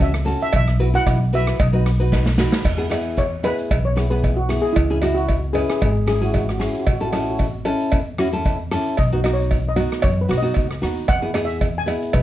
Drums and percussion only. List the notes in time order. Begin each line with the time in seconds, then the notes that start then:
0.00 kick, closed hi-hat
0.14 cross-stick
0.27 closed hi-hat
0.41 closed hi-hat
0.53 kick, closed hi-hat, cowbell
0.68 cross-stick
0.80 closed hi-hat
0.95 closed hi-hat
1.07 kick, cross-stick, closed hi-hat, cowbell
1.33 closed hi-hat
1.47 cross-stick, closed hi-hat
1.59 kick, closed hi-hat, cowbell
1.86 cross-stick, closed hi-hat
2.00 closed hi-hat
2.12 kick, snare, cowbell
2.26 snare
2.38 snare
2.52 snare
2.64 kick, crash, cowbell
2.91 cross-stick, closed hi-hat, cowbell
3.04 closed hi-hat
3.17 kick, closed hi-hat, cowbell
3.44 closed hi-hat, cowbell
3.58 closed hi-hat
3.71 kick, closed hi-hat, cowbell
3.97 cross-stick, closed hi-hat
4.12 closed hi-hat
4.24 kick, closed hi-hat, cowbell
4.50 cross-stick, closed hi-hat
4.64 closed hi-hat
4.76 kick, closed hi-hat, cowbell
5.02 cross-stick, closed hi-hat, cowbell
5.18 closed hi-hat
5.29 kick, closed hi-hat, cowbell
5.55 closed hi-hat, cowbell
5.70 cross-stick, closed hi-hat
5.82 kick, closed hi-hat, cowbell
6.08 cross-stick, closed hi-hat
6.23 closed hi-hat
6.34 kick, closed hi-hat, cowbell
6.49 cross-stick
6.61 cross-stick, closed hi-hat
6.74 closed hi-hat
6.86 kick, closed hi-hat, cowbell
7.13 cross-stick, closed hi-hat, cowbell
7.27 closed hi-hat
7.39 kick, closed hi-hat, cowbell
7.65 closed hi-hat, cowbell
7.80 closed hi-hat
7.92 kick, closed hi-hat, cowbell
8.18 cross-stick, closed hi-hat
8.33 closed hi-hat
8.45 kick, closed hi-hat, cowbell
8.71 cross-stick, closed hi-hat
8.87 closed hi-hat
8.97 kick, closed hi-hat, cowbell
9.24 cross-stick, closed hi-hat, cowbell
9.40 closed hi-hat
9.51 kick, closed hi-hat, cowbell
9.76 closed hi-hat, cowbell
9.92 cross-stick, closed hi-hat
10.02 kick, closed hi-hat, cowbell
10.31 cross-stick, closed hi-hat
10.44 closed hi-hat
10.54 kick, closed hi-hat, cowbell
10.71 cross-stick
10.83 cross-stick, closed hi-hat
10.97 closed hi-hat
11.08 kick, closed hi-hat, cowbell
11.34 cross-stick, closed hi-hat, cowbell
11.49 closed hi-hat
11.61 kick, closed hi-hat, cowbell
11.88 closed hi-hat, cowbell
12.03 closed hi-hat
12.13 kick, closed hi-hat, cowbell